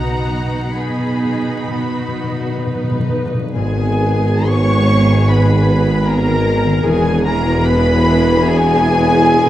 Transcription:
Already playing: B1 B2 B3 D#4 F#4 F#5 A#5
0.07 B2
0.15 B2
0.24 B2
0.29 F#3
0.39 B2
0.48 B2
0.57 B2
0.73 B2 B3 D#4 G#4 B5
0.83 B2
0.90 B2
0.99 B2
1.17 B2
1.22 B2 D#4
1.34 B2
1.43 B2
1.51 B2
1.59 B2
1.68 B2 F#4
1.75 B2
1.82 B2
1.92 B2
2.00 B2
2.08 B2
2.15 B2 F#3
2.23 B2
2.32 B2
2.41 B2
2.48 B2
2.58 B2 B4
2.62 B3
2.67 B2
2.75 B2
2.84 B2
2.91 B2
3.00 B2
3.09 B2 D#4
3.17 B2
3.26 B2
3.34 B2
3.42 B2
3.53 G#1 G#2 D#3 B3 G#4 G#5
3.76 D#3
4.00 B3
4.24 D#4
4.47 G#4 C#5 C#6
4.70 B4
4.90 D#5
5.10 G#5
5.30 B4 D#5 B5
5.49 G#5
5.69 D#5
5.88 G#4
6.06 D#4 A#4 A#5
6.27 D#3
6.46 B3
6.65 D#3
6.82 E1 E2 E3 B3 G#4 G#5
7.04 B2
7.24 B3 A#4 A#5
7.46 E4
7.66 B4 B5
7.86 E4
8.07 E5
8.27 B5
8.45 G#4 E5 G#5
8.66 B5
8.86 E5
9.06 B4
9.27 E4
9.45 B2

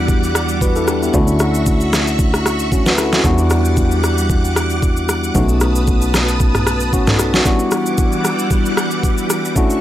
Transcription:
Already playing: E2 G3 B3 D4 E4 F#4 F#5 D6
0.09 kick, shaker
0.23 shaker
0.35 cross-stick, shaker
0.49 shaker
0.61 F#4 B4, kick, shaker
0.76 E4 A4, shaker
0.88 D4 G4, cross-stick, shaker
1.02 B3 E4, shaker
1.13 D2 A3 C#4 D4 E4 F#4 E5 C#6, kick, shaker
1.28 shaker
1.39 cross-stick, shaker
1.54 shaker
1.66 kick, shaker
1.81 shaker
1.93 cross-stick, snare, shaker
2.07 shaker
2.19 kick, shaker
2.34 cross-stick, shaker
2.46 cross-stick, shaker
2.59 shaker
2.72 C#4 F#4, kick, shaker
2.86 F#4 B4, snare, shaker
2.98 E4 A4, cross-stick, shaker
3.13 C#4 F#4, snare, shaker
3.24 E2 G3 B3 D4 E4 F#4 F#5 D6, kick, shaker
3.38 shaker
3.50 cross-stick, shaker
3.65 shaker
3.77 kick, shaker
3.91 shaker
4.04 cross-stick, shaker
4.18 shaker
4.30 kick, shaker
4.45 shaker
4.56 cross-stick, shaker
4.70 shaker
4.82 kick, shaker
4.97 shaker
5.09 cross-stick, shaker
5.24 shaker
5.34 B1 A3 B3 C#4 D#4 F#4 B4 A5 D#6, kick, shaker
5.49 shaker
5.60 cross-stick, shaker
5.76 shaker
5.87 kick, shaker
6.02 shaker
6.14 cross-stick, snare, shaker
6.28 shaker
6.40 kick, shaker
6.55 cross-stick, mid tom, shaker
6.67 cross-stick, shaker
6.80 shaker
6.93 C#4 F#4, kick, shaker
7.07 D#4 A4, snare, mid tom, shaker
7.19 cross-stick, shaker
7.34 C#4 F#4, snare, shaker
7.45 E3 G3 B3 D4 E4 F#4 F#5 D6, kick, shaker
7.59 shaker
7.71 cross-stick, shaker
7.86 shaker
7.98 kick, shaker
8.12 shaker
8.25 cross-stick, shaker
8.39 shaker
8.51 kick, shaker
8.66 shaker
8.77 cross-stick, shaker
8.91 shaker
9.03 kick, shaker
9.18 shaker
9.30 cross-stick, shaker
9.45 shaker
9.55 D3 A3 C#4 D4 E4 F#4 E5 C#6, kick, shaker
9.70 shaker

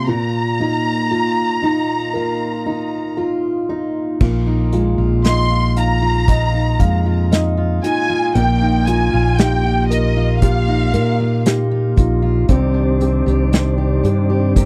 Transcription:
Already playing: A#3 C4 F4
0.07 A#2 A#5
0.60 A#3 D#4
1.11 F4
1.62 D#4
2.13 F4 A#4
2.66 D#4
3.17 F4
3.69 D#4
4.20 A#1 A#2 A#3 F4, kick, crash
4.47 D#4
4.72 G#3 F4, closed hi-hat
4.98 A#1 F4
5.24 D#4 D#5 C6, snare, closed hi-hat
5.50 F4
5.76 D#4 F5 A#5, closed hi-hat
6.02 F4
6.28 A#2 F4 D#5, kick, closed hi-hat
6.54 D#4
6.79 F2 G#3 F5, kick, closed hi-hat
7.06 F4
7.31 D#4 D#5, snare, closed hi-hat
7.57 F4
7.83 D#4 F4 G#5, closed hi-hat
8.09 F4
8.35 A#1 A#2 A#3 F4 G5, closed hi-hat
8.61 D#4
8.87 A#3 F4 G#5, closed hi-hat
9.13 A#1 F4
9.37 D#4 G4 G5, snare, closed hi-hat
9.65 F4
9.88 D#4 A#4 D#5, closed hi-hat
10.17 F4
10.41 A#2 F4 G4 F5, kick, closed hi-hat
10.68 D#4
10.94 A#2 A#3 A#4, closed hi-hat
11.20 F4
11.46 D#4 G4, snare, closed hi-hat
11.71 F4
11.96 A#1 D#4 F4, kick, closed hi-hat
12.22 F4
12.48 C2 C3 D#3 C4 D4 G4, kick, closed hi-hat
12.74 D4
13.00 C4 G4, closed hi-hat
13.26 C2 G4, closed hi-hat
13.52 C4 D4, snare, closed hi-hat
13.78 G4
14.03 G2 D4 G4, closed hi-hat
14.30 G4
14.56 C3 A#3 C4 G4, kick, closed hi-hat

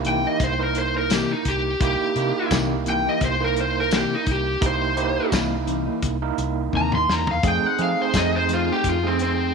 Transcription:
Already playing: C2 A#3 D#4 E4 G4
0.04 C3 E3 A#3 D#4 G5, closed hi-hat
0.23 E3 A#3 D#4 D#5
0.40 C2 C5, kick, closed hi-hat
0.59 A#3 D#4 E4 A#4
0.75 closed hi-hat
0.79 C5
0.98 A#4
1.10 C3 E3 A#3 D#4 G4, snare, closed hi-hat, tambourine
1.33 D#4
1.45 C2 G4, kick, closed hi-hat
1.80 C2 A#3 D#4 E4 G4, kick, closed hi-hat
2.16 C3 A#3 D#4 E4 G4, closed hi-hat
2.51 C2 C3 E3 A#3 D#4 E4 G4, kick, snare, closed hi-hat, tambourine
2.86 C3 E3 A#3 D#4 G5, closed hi-hat
3.05 E3 A#3 D#4 D#5
3.21 C2, kick, closed hi-hat
3.25 C5
3.40 A#3 D#4 E4 A#4
3.56 closed hi-hat
3.60 C5
3.80 A#4
3.91 C3 E3 A#3 D#4, snare, closed hi-hat, tambourine
3.97 G4
4.15 D#4
4.26 C2, kick, closed hi-hat
4.31 G4
4.61 C2 A#3 D#4 E4 G4, kick, closed hi-hat
4.66 C5
4.97 A#3 D#4 E4 G4, closed hi-hat
5.32 C2 C3 E3 A#3 D#4 E4 A#4, kick, snare, closed hi-hat, tambourine
5.67 C3 E3 A#3 D#4, closed hi-hat
5.86 E3 A#3 D#4
6.02 C2, kick, closed hi-hat
6.22 A#3 D#4 E4 A#4
6.38 C2, closed hi-hat
6.73 D#2 C3 E3 A#3 D#4, kick
6.77 A#5
6.92 C6, mid tom
7.08 E2 A#5, snare
7.27 F5, floor tom
7.43 F2 F3 A3 C4 D#4 G#4, kick, closed hi-hat
7.47 G5
7.63 F#5, muted fingered electric bass stroke
7.79 F3 A3 C4 D#4 G#4 F5, closed hi-hat
8.02 C5
8.13 F2 F3 A3 C4 D#4 G#4, kick, snare, closed hi-hat, tambourine
8.18 D#5
8.36 C5
8.49 F3 A3 D#4 G#4, closed hi-hat
8.53 F4
8.68 A3 D#4 G#4
8.72 G4
8.84 F2, kick, closed hi-hat
8.89 F4
9.03 A3 C4 D#4 G#4
9.19 C4, closed hi-hat

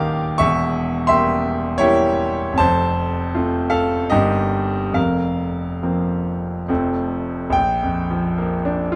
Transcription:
Already playing: D#1 D#2 D#3 A#3 G4 A#4 F5 G5 D6 D#6
0.38 E1 E2 E5 C#6
1.07 G3 A#3 G4 E5 C6
1.78 G3 A#3 E4 G4 C#5
2.53 F1
2.58 F2 C5 A5
3.34 A3 C4 F4
3.70 A4 F5
4.10 G1 G2 A#3 D#4 G4 D#5
4.92 F2 A#4 F5
4.96 F1
5.83 F3 A#3 C4
6.68 F1 F2 F3 A3 C4
7.50 A#1 G5
7.83 F2
8.11 F3
8.38 A#3
8.65 D4
8.92 F4

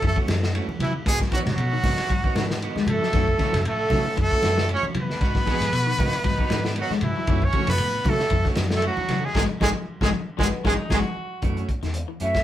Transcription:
0.02 F#2 E3, muted clean electric guitar stroke, kick, ride bell, high conga
0.07 A3 A4
0.16 E3 A3 C#4 F#4, kick
0.27 F#2, muted clean electric guitar stroke, snare, ride bell, high conga
0.43 F#3, snare
0.54 E3 A3 C#4 F#4, ride bell
0.67 muted fingered electric bass stroke, muted clean electric guitar stroke, high conga
0.79 E3 F#3 E4, muted clean electric guitar stroke, ride bell, low conga
1.06 G#2 D#3 G#3 B3 F#4 G#4, muted clean electric guitar stroke, kick, snare, ride bell
1.20 F#3, muted clean electric guitar stroke, kick, snare
1.31 D#3 E3 B3 D#4 F#4, kick, ride bell, high conga
1.36 F#3
1.45 G#2 F#3 F#4, muted clean electric guitar stroke, snare, ride bell, high conga, low conga
1.57 B2, ride bell
1.73 D#3, muted clean electric guitar stroke
1.84 G#2 D#3 B3 D#4 F#4, kick, snare, open hi-hat, high conga, low conga
1.98 muted clean electric guitar stroke, snare, ride bell
2.09 G#2 F#3, muted clean electric guitar stroke, kick, ride bell
2.24 D#3 B3 D#4 F#4, kick
2.35 G#2 D#3, muted clean electric guitar stroke, snare, ride bell, high conga
2.50 snare
2.62 D#3 B3 D#4 F#4, ride bell
2.76 G#3, muted fingered electric bass stroke, muted clean electric guitar stroke, snare, high conga
2.87 G#2 A4, muted clean electric guitar stroke, ride bell, high conga, low conga
2.92 A3
3.02 F#3, snare
3.13 F#2 D#3 E3 A3 C#4 F#4, kick, snare, ride bell
3.28 muted clean electric guitar stroke, kick
3.38 C#3 E3 A3 C#4, kick, snare, ride bell, high conga
3.42 F#4
3.53 F#2, muted clean electric guitar stroke, snare, ride bell, high conga, low conga
3.65 A2 A3 A4, ride bell
3.81 muted clean electric guitar stroke
3.90 D#3 F#3 A3 C#4 F#4, muted clean electric guitar stroke, kick, snare, open hi-hat, high conga, low conga
4.07 muted clean electric guitar stroke
4.17 F#2 E3, muted clean electric guitar stroke, kick, ride bell
4.22 A3 A4
4.31 E3 A3 C#4 F#4, kick
4.42 F#2, muted clean electric guitar stroke, snare, ride bell, high conga
4.58 F#3, snare
4.69 E3 A3 C#4 F#4, ride bell
4.74 C#4 C#5
4.83 muted fingered electric bass stroke, muted clean electric guitar stroke, high conga
4.94 E3 F#3, muted clean electric guitar stroke, ride bell, low conga
4.99 B3 B4
5.10 snare
5.21 G#2 B3 D#4 F#4, muted clean electric guitar stroke, kick, snare, ride bell
5.35 F#3, muted clean electric guitar stroke, kick, snare
5.46 E3 B3 D#4 F#4 G#4, muted clean electric guitar stroke, kick, snare, ride bell, high conga
5.60 G#2, muted clean electric guitar stroke, snare, ride bell, high conga
5.73 B2 F#4, ride bell
5.87 D#3 F#4, muted clean electric guitar stroke
5.98 G#2 D#3 B3 D#4 F#4, kick, open hi-hat, high conga, low conga
6.13 muted clean electric guitar stroke, ride bell
6.24 G#2 F#3 D#4, muted clean electric guitar stroke, kick, ride bell, high conga
6.39 D#3 B3 D#4 F#4, kick
6.50 G#2 D#3, muted clean electric guitar stroke, snare, ride bell, high conga
6.65 snare
6.76 D#3 B3 D#4 F#4, ride bell
6.80 F#3 F#4
6.90 G#3, muted fingered electric bass stroke, muted clean electric guitar stroke, snare, high conga
7.01 G#2 E4, muted clean electric guitar stroke, ride bell, low conga
7.06 E3
7.17 F#3
7.27 F#2 D#3 E3 A3 C#4 F#4, kick, ride bell
7.42 C#5, muted clean electric guitar stroke, kick
7.48 C#4
7.53 C#3 E3 A3 C#4 F#4, kick, ride bell, high conga
7.67 F#2 B4, muted clean electric guitar stroke, snare, ride bell, high conga, low conga
7.73 B3
7.78 A2, ride bell
7.95 muted clean electric guitar stroke
8.04 D#3 E3 F#3 A3 C#4 F#4, kick, open hi-hat, high conga, low conga
8.09 A3 A4
8.19 muted clean electric guitar stroke, snare
8.30 F#2 E3, muted clean electric guitar stroke, kick, ride bell
8.45 E3 A3 C#4 F#4, kick, snare
8.55 F#2, muted clean electric guitar stroke, snare, ride bell, high conga
8.71 F#3, snare
8.76 A3 A4
8.82 E3 A3 C#4 F#4, ride bell
8.87 F#3 F#4
8.97 muted clean electric guitar stroke, muted fingered electric bass stroke, high conga
9.09 E3 F#3, muted clean electric guitar stroke, snare, ride bell, low conga
9.25 G#3 G#4
9.35 G#1 D#3 F#3 G#3 B3 D#4 G#4, kick, snare, high conga
9.61 G#1 D#3 F#3 G#3 B3 D#4 G#4, kick, snare, high conga
10.01 G#1 D#3 F#3 G#3 B3 D#4 G#4, kick, snare, high conga
10.38 G#1 D#3 F#3 G#3 B3 D#4 G#4, kick, snare, high conga
10.64 G#1 D#3 F#3 G#3 B3 D#4 G#4, kick, snare, high conga
10.90 G#1 D#3 F#3 G#3 B3 D#4 F#4 G#4, kick, snare, high conga
11.42 F#2 E3 A3 F#4, muted clean electric guitar stroke, kick, closed hi-hat
11.57 A3 C#4 F#4, closed hi-hat
11.69 muted clean electric guitar stroke, kick, closed hi-hat
11.83 E2 D#3, snare, closed hi-hat
11.94 muted clean electric guitar stroke, closed hi-hat
12.08 E3, muted clean electric guitar stroke
12.20 F#2 E3 A3 C#4 F#4 E5, closed hi-hat
12.34 muted clean electric guitar stroke, kick, snare, closed hi-hat

